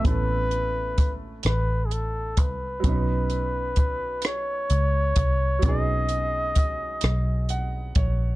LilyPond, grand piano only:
\new Staff \with { instrumentName = "Grand piano" } { \time 6/8 \key b \dorian \tempo 4. = 43 << { r2. | r2. | r2 fis''8 cis''8 | } \\ { <a b cis' e' a'>2. | <fis b cis' dis' b'>2. | <fis b cis' dis' gis'>2. | } >> }